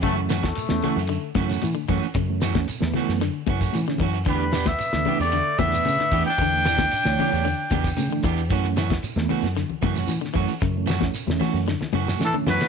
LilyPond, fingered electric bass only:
\new Staff \with { instrumentName = "Fingered electric bass" } { \clef bass \time 4/4 \key fis \phrygian \tempo 4 = 113 fis,8. e,16 r16 e,16 r16 fis,8 r16 fis,8 e16 r16 fis,16 r16 | fis,8. e,16 r16 e,16 r16 fis,8 r16 fis,8 e16 r16 fis,8 | e,8. d,16 r16 d,16 r16 e,8 r16 e,8 cis16 r16 e,16 r16 | e,8. d,16 r16 d,16 r16 e,8 r16 e,8 cis16 r16 e,8 |
fis,8. e,16 r16 e,16 r16 fis,8 r16 fis,8 e16 r16 fis,16 r16 | fis,8. e,16 r16 e,16 r16 fis,8 r16 fis,8 e16 r16 fis,16 r16 | }